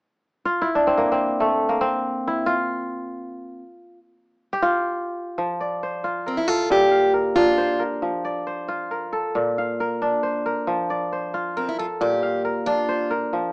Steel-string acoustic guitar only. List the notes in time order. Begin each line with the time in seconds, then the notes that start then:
6.28 C4
6.37 E4
6.48 F4
6.72 G4
7.36 F4
11.57 C4
11.69 E4
11.79 F4
12.01 G4
12.66 F4